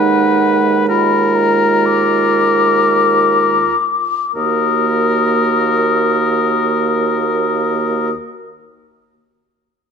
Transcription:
Already playing: D#2 G#3 D#4 B4 F#5
0.88 F4 A#4 B5
1.35 A#5
1.85 D6
4.34 D#2 A#3 F#4 A#4 D#6

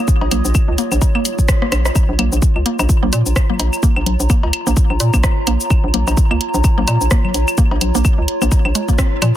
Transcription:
Already playing: G3 D#4 F4 C#5 D#6
0.08 kick, cabasa
0.21 A#1, cowbell
0.31 A#1 A#3, closed hi-hat, low conga, cabasa, claves
0.45 A#1, cabasa
0.55 kick, cabasa, claves
0.68 C#2
0.78 A#3, closed hi-hat, cabasa
0.92 A#1, cabasa, claves
1.02 kick, cowbell, cabasa
1.15 A#3, claves
1.25 closed hi-hat, cabasa
1.39 kick, cabasa
1.48 kick, cross-stick, cabasa, claves
1.62 A#3, cross-stick
1.72 A#1, cross-stick, closed hi-hat, cabasa, claves
1.85 cross-stick, cowbell, cabasa
1.95 F4, kick, cowbell, cabasa, claves
2.09 A#1
2.19 A#1 A#3, closed hi-hat, low conga, claves
2.25 C#5
2.32 A#1, cabasa
2.42 A#5, kick, cabasa
2.56 C#2, claves
2.66 A#3, closed hi-hat
2.79 A#1, cowbell, cabasa, claves
2.89 kick, cabasa
3.03 A#1 A#3, low conga
3.13 A#2, closed hi-hat, cabasa, claves
3.26 A#1, cabasa
3.36 kick, cross-stick, cabasa, claves
3.50 A#3, low conga
3.59 A#1, closed hi-hat, cowbell, cabasa
3.73 cabasa, claves
3.83 A#3, kick, cabasa
3.96 A#1, claves
4.06 A#1, closed hi-hat, low conga
4.20 A#1, cabasa
4.30 A#3, kick, cabasa, claves
4.43 C#2, cowbell
4.53 closed hi-hat, claves
4.67 A#1 A#3, cabasa
4.77 kick, cabasa
4.90 A#1, claves
5.00 A#2, closed hi-hat, cabasa
5.14 A#1 A#3, kick, cabasa, claves
5.24 kick, cross-stick, cowbell, cabasa
5.47 A#1 A#3, closed hi-hat, cabasa, claves
5.61 cabasa
5.70 kick, cabasa, claves
5.84 A#1
5.94 A#1 A#3, closed hi-hat, low conga
6.07 A#1, cowbell, cabasa, claves
6.17 kick, cabasa
6.31 C#2 A#3, claves
6.41 closed hi-hat
6.54 A#1, cabasa
6.64 kick, cabasa, claves
6.78 A#1 A#3, low conga
6.88 A#2, closed hi-hat, cowbell, cabasa, claves
7.01 A#1, cabasa
7.11 A#3, kick, cross-stick, cabasa
7.25 low conga, claves
7.34 A#1, closed hi-hat, cabasa
7.48 cabasa, claves
7.58 A#3, kick, cabasa
7.71 A#1, cowbell
7.81 A#1, closed hi-hat, low conga, cabasa, claves
7.95 A#1 A#3, cabasa
8.05 kick, cabasa, claves
8.18 C#2
8.28 closed hi-hat
8.42 A#1 A#3, cabasa, claves
8.52 kick, cowbell, cabasa
8.65 A#1, claves
8.75 G#3, closed hi-hat, cabasa
8.88 A#3, kick, cabasa
8.98 C4, kick, cross-stick, cabasa, claves
9.22 A#2 F3, closed hi-hat, cabasa, claves

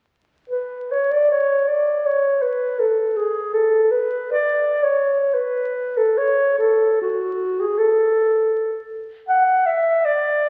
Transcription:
0.50 B4
0.92 C#5
1.11 D5
1.30 C#5
1.68 D5
2.06 C#5
2.42 B4
2.80 A4
3.16 G#4
3.53 A4
3.91 B4
4.32 D5
4.83 C#5
5.34 B4
5.97 A4
6.18 C#5
6.58 A4
7.01 F#4
7.60 G#4
7.78 A4
9.29 F#5
9.66 E5
10.05 D5

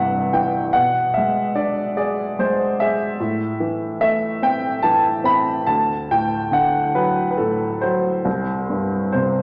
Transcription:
Already playing: C2 G2 C3 E3 D5 E5 F#5
0.33 E3 G5
0.73 B2 F#5
1.14 G#3 E5
1.55 D4 D5
1.97 G#4 D5
2.39 G#3 C5
2.80 G#4 E5
3.20 A2
3.60 E3
4.01 A3 E5
4.42 C4 G5
4.83 E3 A5
5.24 C4 B5
5.67 D2 A5
6.11 A2 G5
6.51 D3 F#5
6.95 F#3 B4
7.31 B4
7.38 A2 A4
7.81 F#3 C5
8.25 C2
8.69 G2
9.12 C3 C5

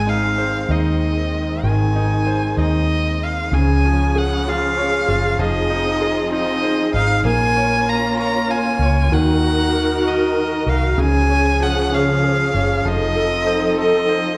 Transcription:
Already playing: G#1 D#3 G#3 C4 G#5
0.07 D#4 F5
0.38 C5
0.69 D#2 D#4 D#5
1.63 G#1 D#3 G#5
1.96 D#4
2.27 C5
2.57 D#2 D#4 D#5
3.23 F5
3.51 C#2 C#3 F3 C#4 G#4 G#5
3.85 F3
4.15 G#4 F#5
4.48 F4 F5
4.78 C#5
5.08 F#1 F4
5.39 F1 F3 C4 D#4 D#5
5.70 D#4
6.01 G#4
6.32 D#4 D#5
6.63 C5
6.94 G#1 D#4 F5
7.23 A#1 A#3 C#4 F4 G#5
7.56 C#5
7.88 F5 A#5
8.19 C#5 A#5
8.50 F5 G#5
8.79 C#2 C#5
9.10 D#2 D#3 D#4 F#4 A#4 F#5
9.43 F#4
9.73 A#4
10.04 F#4 D#5
10.34 A#4
10.66 C2 F#4 F5
10.98 C#2 C#3 F3 C#4 G#4 G#5
11.30 C#4
11.60 F3 F#5
11.92 C#4 F5
12.24 G#4
12.54 F#1 C#4
12.85 F1 F3 C4 D#4 A4 D#5
13.16 A4
13.47 C5
13.77 A4 D#5
14.09 C5

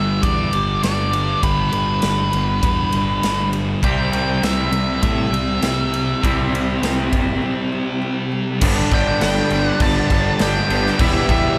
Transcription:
Already playing: G1 G2 D3 G3 B3 D4 G4 E5
0.23 E2 G2 D3 G3 B3 D5, kick, ride
0.53 G1 G3, ride
0.83 G1 G3 D5, snare, ride
1.13 G3, ride
1.43 G1 G2 D3 G3 B3 D4 G4 B4, kick, ride
1.72 G1 B3 B4, ride
2.02 G1 G3, snare, ride
2.32 G1 G3, ride
2.62 E2 G2 D3 G3 B3, kick, ride
2.91 G1 G3, ride
3.22 G1 G3, snare, ride
3.52 G3, ride
3.82 C2 C3 G3 C4 E4 G4 G5, kick, ride
3.86 C4
4.12 C2 C4, ride
4.42 C2 G3 E5, snare, ride
4.71 C2 G3, ride
5.03 A2 C3 G3 C4 E5, kick, ride
5.07 C4
5.32 C2 G3, ride
5.62 C2 G3, snare, ride
5.92 G3, ride
6.22 C2 C3 G3 C4 E4 G4, kick, ride
6.52 C2 C4, ride
6.82 C2 G3, snare, ride
7.12 F#1 G3, kick, ride
7.42 C3 G3 C4
7.72 G3
8.01 G3
8.32 G3
8.61 G1 G2 D3 G3 B3 D4 G4 A4 B4 D5 A5, kick, crash
8.92 G1 G2 D3 G3 B3 D4 A4 G5, kick, crash
9.21 G1 G2 D3 G3 B3 D4 G5, snare, crash
9.50 G1 G2 D3 G3 B3 D4, crash
9.66 F#5
9.79 G1 G2 D3 G3 B3 D4 A5, kick, crash
10.10 G1 G2 D3 G3 B3 D4 A4, kick, crash
10.38 G1 G2 D3 G3 B3 D4 G5, snare, crash
10.69 G1 G2 D3 G3 B3 D4, crash
10.87 snare
10.98 E1 E2 B2 E3 G3 B3 E4 G4 E5 B5, kick, crash
11.28 E1 E3 G3 B3 E4 G4, kick, crash

